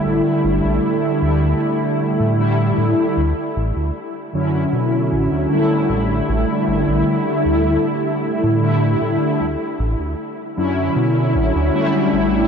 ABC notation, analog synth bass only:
X:1
M:4/4
L:1/16
Q:1/4=77
K:D
V:1 name="Analog synth bass" clef=bass
A,,, z G,,, A,,, z2 D,,2 z3 A,,3 A,, z | D,, z A,,, D,, z2 F,,2 B,,2 A,,, D,, z2 A,,,2 | A,,, z G,,, A,,, z2 D,,2 z3 A,,3 A,, z | D,, z A,,, D,, z2 F,,2 B,,2 A,,, D,, z2 A,,,2 |]